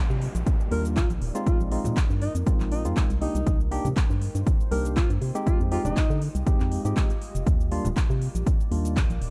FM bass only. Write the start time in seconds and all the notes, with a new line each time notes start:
0.10 C3
0.35 A#1
0.72 D#2
1.10 A#1
1.22 D#1
1.60 A#1
1.85 A#2
2.10 G2
2.35 F2
2.60 A#1
2.85 F2
3.10 C2
3.35 C2
3.47 C2
3.85 C3
4.10 G2
4.35 G2
4.72 C2
5.10 G2
5.22 C3
5.60 F2
5.85 F1
6.10 D3
6.35 C2
6.60 F2
6.85 G#2
7.35 F1
7.47 D#2
7.85 D#1
8.10 C3
8.35 A#1
8.72 D#2
9.10 A#1
9.22 D#1